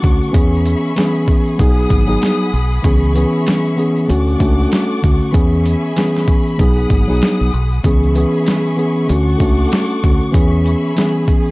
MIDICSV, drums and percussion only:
0, 0, Header, 1, 2, 480
1, 0, Start_track
1, 0, Tempo, 625000
1, 263, Time_signature, 4, 2, 24, 8
1, 8840, End_track
2, 0, Start_track
2, 0, Title_t, "Drums"
2, 23, Note_on_c, 9, 82, 52
2, 29, Note_on_c, 9, 36, 96
2, 99, Note_off_c, 9, 82, 0
2, 106, Note_off_c, 9, 36, 0
2, 163, Note_on_c, 9, 82, 52
2, 240, Note_off_c, 9, 82, 0
2, 257, Note_on_c, 9, 82, 74
2, 263, Note_on_c, 9, 42, 89
2, 264, Note_on_c, 9, 36, 115
2, 334, Note_off_c, 9, 82, 0
2, 340, Note_off_c, 9, 36, 0
2, 340, Note_off_c, 9, 42, 0
2, 405, Note_on_c, 9, 82, 54
2, 482, Note_off_c, 9, 82, 0
2, 504, Note_on_c, 9, 42, 53
2, 504, Note_on_c, 9, 82, 54
2, 515, Note_off_c, 9, 82, 0
2, 515, Note_on_c, 9, 82, 50
2, 581, Note_off_c, 9, 42, 0
2, 592, Note_off_c, 9, 82, 0
2, 652, Note_on_c, 9, 82, 49
2, 729, Note_off_c, 9, 82, 0
2, 741, Note_on_c, 9, 42, 83
2, 745, Note_on_c, 9, 82, 69
2, 752, Note_on_c, 9, 38, 94
2, 818, Note_off_c, 9, 42, 0
2, 822, Note_off_c, 9, 82, 0
2, 829, Note_off_c, 9, 38, 0
2, 884, Note_on_c, 9, 82, 56
2, 960, Note_off_c, 9, 82, 0
2, 975, Note_on_c, 9, 82, 51
2, 982, Note_on_c, 9, 36, 96
2, 983, Note_off_c, 9, 82, 0
2, 983, Note_on_c, 9, 82, 51
2, 1058, Note_off_c, 9, 36, 0
2, 1060, Note_off_c, 9, 82, 0
2, 1121, Note_on_c, 9, 82, 51
2, 1198, Note_off_c, 9, 82, 0
2, 1224, Note_on_c, 9, 36, 95
2, 1226, Note_on_c, 9, 42, 80
2, 1226, Note_on_c, 9, 82, 72
2, 1301, Note_off_c, 9, 36, 0
2, 1303, Note_off_c, 9, 42, 0
2, 1303, Note_off_c, 9, 82, 0
2, 1368, Note_on_c, 9, 82, 55
2, 1445, Note_off_c, 9, 82, 0
2, 1461, Note_on_c, 9, 36, 91
2, 1463, Note_on_c, 9, 42, 57
2, 1463, Note_on_c, 9, 82, 57
2, 1538, Note_off_c, 9, 36, 0
2, 1540, Note_off_c, 9, 42, 0
2, 1540, Note_off_c, 9, 82, 0
2, 1608, Note_on_c, 9, 82, 54
2, 1684, Note_off_c, 9, 82, 0
2, 1704, Note_on_c, 9, 42, 65
2, 1709, Note_on_c, 9, 82, 75
2, 1712, Note_on_c, 9, 38, 117
2, 1781, Note_off_c, 9, 42, 0
2, 1785, Note_off_c, 9, 82, 0
2, 1788, Note_off_c, 9, 38, 0
2, 1844, Note_on_c, 9, 82, 55
2, 1921, Note_off_c, 9, 82, 0
2, 1943, Note_on_c, 9, 82, 52
2, 2020, Note_off_c, 9, 82, 0
2, 2084, Note_on_c, 9, 82, 54
2, 2160, Note_off_c, 9, 82, 0
2, 2177, Note_on_c, 9, 82, 71
2, 2183, Note_on_c, 9, 42, 88
2, 2184, Note_on_c, 9, 36, 118
2, 2254, Note_off_c, 9, 82, 0
2, 2259, Note_off_c, 9, 42, 0
2, 2260, Note_off_c, 9, 36, 0
2, 2324, Note_on_c, 9, 82, 55
2, 2401, Note_off_c, 9, 82, 0
2, 2423, Note_on_c, 9, 42, 55
2, 2423, Note_on_c, 9, 82, 54
2, 2434, Note_off_c, 9, 82, 0
2, 2434, Note_on_c, 9, 82, 49
2, 2500, Note_off_c, 9, 42, 0
2, 2511, Note_off_c, 9, 82, 0
2, 2571, Note_on_c, 9, 82, 47
2, 2648, Note_off_c, 9, 82, 0
2, 2661, Note_on_c, 9, 42, 85
2, 2665, Note_on_c, 9, 82, 70
2, 2672, Note_on_c, 9, 38, 96
2, 2738, Note_off_c, 9, 42, 0
2, 2742, Note_off_c, 9, 82, 0
2, 2749, Note_off_c, 9, 38, 0
2, 2804, Note_on_c, 9, 82, 54
2, 2880, Note_off_c, 9, 82, 0
2, 2895, Note_on_c, 9, 82, 50
2, 2903, Note_off_c, 9, 82, 0
2, 2903, Note_on_c, 9, 82, 52
2, 2980, Note_off_c, 9, 82, 0
2, 3041, Note_on_c, 9, 82, 54
2, 3118, Note_off_c, 9, 82, 0
2, 3145, Note_on_c, 9, 42, 80
2, 3146, Note_on_c, 9, 82, 72
2, 3221, Note_off_c, 9, 42, 0
2, 3223, Note_off_c, 9, 82, 0
2, 3289, Note_on_c, 9, 82, 54
2, 3366, Note_off_c, 9, 82, 0
2, 3381, Note_on_c, 9, 36, 92
2, 3382, Note_on_c, 9, 42, 57
2, 3382, Note_on_c, 9, 82, 57
2, 3384, Note_off_c, 9, 82, 0
2, 3384, Note_on_c, 9, 82, 49
2, 3458, Note_off_c, 9, 36, 0
2, 3458, Note_off_c, 9, 42, 0
2, 3461, Note_off_c, 9, 82, 0
2, 3527, Note_on_c, 9, 82, 53
2, 3604, Note_off_c, 9, 82, 0
2, 3623, Note_on_c, 9, 42, 65
2, 3627, Note_on_c, 9, 82, 78
2, 3631, Note_on_c, 9, 38, 121
2, 3700, Note_off_c, 9, 42, 0
2, 3704, Note_off_c, 9, 82, 0
2, 3707, Note_off_c, 9, 38, 0
2, 3762, Note_on_c, 9, 82, 55
2, 3839, Note_off_c, 9, 82, 0
2, 3864, Note_on_c, 9, 82, 51
2, 3869, Note_on_c, 9, 36, 91
2, 3940, Note_off_c, 9, 82, 0
2, 3946, Note_off_c, 9, 36, 0
2, 4002, Note_on_c, 9, 82, 53
2, 4079, Note_off_c, 9, 82, 0
2, 4095, Note_on_c, 9, 82, 74
2, 4102, Note_on_c, 9, 42, 92
2, 4104, Note_on_c, 9, 36, 121
2, 4172, Note_off_c, 9, 82, 0
2, 4179, Note_off_c, 9, 42, 0
2, 4180, Note_off_c, 9, 36, 0
2, 4244, Note_on_c, 9, 82, 55
2, 4320, Note_off_c, 9, 82, 0
2, 4344, Note_on_c, 9, 42, 56
2, 4344, Note_on_c, 9, 82, 55
2, 4354, Note_off_c, 9, 82, 0
2, 4354, Note_on_c, 9, 82, 52
2, 4420, Note_off_c, 9, 42, 0
2, 4431, Note_off_c, 9, 82, 0
2, 4491, Note_on_c, 9, 82, 47
2, 4567, Note_off_c, 9, 82, 0
2, 4581, Note_on_c, 9, 42, 85
2, 4584, Note_on_c, 9, 82, 71
2, 4592, Note_on_c, 9, 38, 94
2, 4658, Note_off_c, 9, 42, 0
2, 4661, Note_off_c, 9, 82, 0
2, 4668, Note_off_c, 9, 38, 0
2, 4722, Note_on_c, 9, 82, 56
2, 4734, Note_on_c, 9, 38, 39
2, 4799, Note_off_c, 9, 82, 0
2, 4810, Note_off_c, 9, 38, 0
2, 4814, Note_on_c, 9, 82, 51
2, 4821, Note_on_c, 9, 36, 98
2, 4822, Note_off_c, 9, 82, 0
2, 4822, Note_on_c, 9, 82, 51
2, 4898, Note_off_c, 9, 36, 0
2, 4898, Note_off_c, 9, 82, 0
2, 4959, Note_on_c, 9, 82, 53
2, 5036, Note_off_c, 9, 82, 0
2, 5064, Note_on_c, 9, 36, 95
2, 5064, Note_on_c, 9, 42, 76
2, 5064, Note_on_c, 9, 82, 72
2, 5140, Note_off_c, 9, 36, 0
2, 5140, Note_off_c, 9, 82, 0
2, 5141, Note_off_c, 9, 42, 0
2, 5207, Note_on_c, 9, 82, 55
2, 5284, Note_off_c, 9, 82, 0
2, 5300, Note_on_c, 9, 36, 91
2, 5301, Note_on_c, 9, 42, 56
2, 5301, Note_on_c, 9, 82, 57
2, 5302, Note_off_c, 9, 82, 0
2, 5302, Note_on_c, 9, 82, 48
2, 5377, Note_off_c, 9, 36, 0
2, 5378, Note_off_c, 9, 42, 0
2, 5379, Note_off_c, 9, 82, 0
2, 5446, Note_on_c, 9, 82, 54
2, 5523, Note_off_c, 9, 82, 0
2, 5543, Note_on_c, 9, 42, 65
2, 5548, Note_on_c, 9, 82, 76
2, 5550, Note_on_c, 9, 38, 116
2, 5620, Note_off_c, 9, 42, 0
2, 5624, Note_off_c, 9, 82, 0
2, 5627, Note_off_c, 9, 38, 0
2, 5684, Note_on_c, 9, 82, 54
2, 5760, Note_off_c, 9, 82, 0
2, 5783, Note_on_c, 9, 82, 51
2, 5860, Note_off_c, 9, 82, 0
2, 5924, Note_on_c, 9, 82, 51
2, 6000, Note_off_c, 9, 82, 0
2, 6017, Note_on_c, 9, 82, 71
2, 6023, Note_on_c, 9, 36, 119
2, 6023, Note_on_c, 9, 42, 89
2, 6094, Note_off_c, 9, 82, 0
2, 6099, Note_off_c, 9, 42, 0
2, 6100, Note_off_c, 9, 36, 0
2, 6164, Note_on_c, 9, 82, 54
2, 6240, Note_off_c, 9, 82, 0
2, 6264, Note_on_c, 9, 42, 55
2, 6264, Note_on_c, 9, 82, 55
2, 6273, Note_off_c, 9, 82, 0
2, 6273, Note_on_c, 9, 82, 52
2, 6340, Note_off_c, 9, 42, 0
2, 6350, Note_off_c, 9, 82, 0
2, 6410, Note_on_c, 9, 82, 45
2, 6487, Note_off_c, 9, 82, 0
2, 6501, Note_on_c, 9, 42, 88
2, 6504, Note_on_c, 9, 82, 71
2, 6512, Note_on_c, 9, 38, 94
2, 6578, Note_off_c, 9, 42, 0
2, 6581, Note_off_c, 9, 82, 0
2, 6589, Note_off_c, 9, 38, 0
2, 6642, Note_on_c, 9, 82, 53
2, 6718, Note_off_c, 9, 82, 0
2, 6733, Note_on_c, 9, 82, 50
2, 6743, Note_off_c, 9, 82, 0
2, 6743, Note_on_c, 9, 82, 52
2, 6819, Note_off_c, 9, 82, 0
2, 6880, Note_on_c, 9, 82, 52
2, 6956, Note_off_c, 9, 82, 0
2, 6983, Note_on_c, 9, 82, 72
2, 6984, Note_on_c, 9, 42, 77
2, 7060, Note_off_c, 9, 82, 0
2, 7061, Note_off_c, 9, 42, 0
2, 7127, Note_on_c, 9, 82, 55
2, 7204, Note_off_c, 9, 82, 0
2, 7220, Note_on_c, 9, 36, 92
2, 7221, Note_on_c, 9, 42, 58
2, 7221, Note_on_c, 9, 82, 55
2, 7222, Note_off_c, 9, 82, 0
2, 7222, Note_on_c, 9, 82, 50
2, 7297, Note_off_c, 9, 36, 0
2, 7298, Note_off_c, 9, 42, 0
2, 7299, Note_off_c, 9, 82, 0
2, 7366, Note_on_c, 9, 82, 54
2, 7443, Note_off_c, 9, 82, 0
2, 7464, Note_on_c, 9, 42, 67
2, 7467, Note_on_c, 9, 82, 76
2, 7471, Note_on_c, 9, 38, 116
2, 7541, Note_off_c, 9, 42, 0
2, 7544, Note_off_c, 9, 82, 0
2, 7548, Note_off_c, 9, 38, 0
2, 7601, Note_on_c, 9, 82, 56
2, 7678, Note_off_c, 9, 82, 0
2, 7704, Note_on_c, 9, 82, 50
2, 7709, Note_on_c, 9, 36, 97
2, 7781, Note_off_c, 9, 82, 0
2, 7786, Note_off_c, 9, 36, 0
2, 7842, Note_on_c, 9, 82, 53
2, 7918, Note_off_c, 9, 82, 0
2, 7934, Note_on_c, 9, 82, 71
2, 7942, Note_on_c, 9, 42, 92
2, 7943, Note_on_c, 9, 36, 118
2, 8011, Note_off_c, 9, 82, 0
2, 8018, Note_off_c, 9, 42, 0
2, 8020, Note_off_c, 9, 36, 0
2, 8083, Note_on_c, 9, 82, 54
2, 8160, Note_off_c, 9, 82, 0
2, 8184, Note_on_c, 9, 42, 53
2, 8184, Note_on_c, 9, 82, 56
2, 8191, Note_off_c, 9, 82, 0
2, 8191, Note_on_c, 9, 82, 51
2, 8261, Note_off_c, 9, 42, 0
2, 8268, Note_off_c, 9, 82, 0
2, 8329, Note_on_c, 9, 82, 47
2, 8406, Note_off_c, 9, 82, 0
2, 8422, Note_on_c, 9, 42, 85
2, 8423, Note_on_c, 9, 82, 72
2, 8433, Note_on_c, 9, 38, 96
2, 8499, Note_off_c, 9, 42, 0
2, 8500, Note_off_c, 9, 82, 0
2, 8510, Note_off_c, 9, 38, 0
2, 8561, Note_on_c, 9, 82, 53
2, 8638, Note_off_c, 9, 82, 0
2, 8653, Note_on_c, 9, 82, 50
2, 8662, Note_on_c, 9, 36, 97
2, 8663, Note_off_c, 9, 82, 0
2, 8663, Note_on_c, 9, 82, 52
2, 8739, Note_off_c, 9, 36, 0
2, 8739, Note_off_c, 9, 82, 0
2, 8800, Note_on_c, 9, 82, 53
2, 8840, Note_off_c, 9, 82, 0
2, 8840, End_track
0, 0, End_of_file